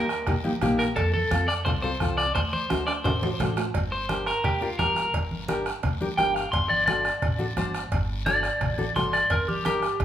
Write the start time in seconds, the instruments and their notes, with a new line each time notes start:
Already playing: upright bass D#2, clean electric guitar A#4
0.09 bombo rim, short guiro
0.27 upright bass A#1, nylon-string guitar A#3 D#4 G4, bombo low, bombo rim, cowbell, high conga, low conga, long guiro
0.44 nylon-string guitar A#3 D#4 G4, high conga
0.61 upright bass A#1, nylon-string guitar A#3 D#4 G4, bombo rim, high conga, low conga, low timbale, short guiro
0.79 clean electric guitar A#4, bombo rim, short guiro
0.96 upright bass F2, clean electric guitar A4, bombo low, bombo rim, cowbell, high conga, long guiro
1.14 clean electric guitar A4, high conga
1.31 upright bass F2, nylon-string guitar C4 F4 A4, bombo rim, high conga, short guiro
1.48 clean electric guitar D5, bombo rim, short guiro
1.65 upright bass C2, nylon-string guitar C4 F4 A4, clean electric guitar C5, bombo low, bombo rim, cowbell, high conga, low conga, long guiro
1.82 nylon-string guitar C4 F4 A4, clean electric guitar C5
2.00 upright bass C2, nylon-string guitar C4 F4 A4, bombo low, bombo rim, high conga, short guiro
2.17 clean electric guitar D5, bombo rim, short guiro
2.35 upright bass D2, clean electric guitar C5, bombo low, bombo rim, cowbell, high conga, long guiro
2.53 clean electric guitar C5, high conga
2.70 upright bass D2, nylon-string guitar D4 F#4 A4, bombo rim, high conga, high timbale, short guiro
2.87 clean electric guitar D5, bombo rim, high timbale, short guiro
3.04 upright bass A1, nylon-string guitar D4 F#4 A4, clean electric guitar C5, bombo low, bombo rim, cowbell, high conga, low conga, high timbale, long guiro
3.22 nylon-string guitar D4 F#4 A4, high conga, low timbale
3.39 upright bass A1, nylon-string guitar D4 F#4 A4, bombo rim, high conga, low conga, low timbale, short guiro
3.57 bombo rim, low timbale, short guiro
3.74 upright bass G1, bombo low, bombo rim, cowbell, long guiro
3.92 clean electric guitar C5
4.09 nylon-string guitar D4 G4 A#4, bombo rim, high conga, short guiro
4.26 clean electric guitar A#4, bombo rim, short guiro
4.44 upright bass D2, clean electric guitar G4, bombo low, bombo rim, cowbell, high conga, low conga, long guiro
4.61 nylon-string guitar D4 G4 A#4, clean electric guitar F4
4.79 upright bass G1, nylon-string guitar D4 G4 A#4, clean electric guitar A#4, bombo low, bombo rim, high conga, low timbale, short guiro
4.96 bombo rim, short guiro
5.14 upright bass G1, bombo low, bombo rim, cowbell, high conga, long guiro
5.31 high conga
5.48 nylon-string guitar D4 G4 A#4, bombo rim, high conga, short guiro
5.66 bombo rim, short guiro
5.83 upright bass D2, bombo low, bombo rim, cowbell, high conga, low conga, long guiro
6.01 nylon-string guitar D4 G4 A#4, high conga
6.17 upright bass G1, nylon-string guitar D4 G4 A#4, clean electric guitar G5, bombo rim, high conga, low timbale, short guiro
6.35 clean electric guitar F5, bombo rim, short guiro
6.52 upright bass G1, clean electric guitar C6, bombo low, bombo rim, cowbell, high conga, long guiro
6.69 clean electric guitar D5, high conga
6.86 nylon-string guitar D4 F#4 A4, clean electric guitar D5, bombo rim, high conga, short guiro
7.05 bombo rim, short guiro
7.22 upright bass A1, bombo low, bombo rim, cowbell, high conga, low conga, long guiro
7.39 nylon-string guitar D4 F#4 A4, high conga
7.57 upright bass G1, nylon-string guitar D4 F#4 C5, bombo rim, high conga, short guiro
7.74 bombo rim, short guiro
7.92 upright bass G1, bombo low, bombo rim, cowbell, high conga, long guiro
8.26 nylon-string guitar D4 F#4 A4, clean electric guitar D5, bombo rim, high conga, short guiro
8.43 bombo rim, short guiro
8.61 upright bass A1, bombo low, bombo rim, cowbell, high conga, low conga, long guiro
8.78 nylon-string guitar D4 F#4 A4, high conga
8.96 upright bass G1, nylon-string guitar D4 F#4 A4, clean electric guitar C6, bombo rim, high conga, low conga, low timbale, short guiro
9.13 clean electric guitar D5, bombo rim, short guiro
9.30 upright bass G1, clean electric guitar A#4, bombo low, bombo rim, cowbell, long guiro
9.48 clean electric guitar G4, high conga
9.65 nylon-string guitar D4 G4 A#4, clean electric guitar G4, bombo rim, high conga, short guiro
9.82 bombo rim, short guiro
10.00 upright bass D2, bombo low, bombo rim, cowbell, high conga, low conga, long guiro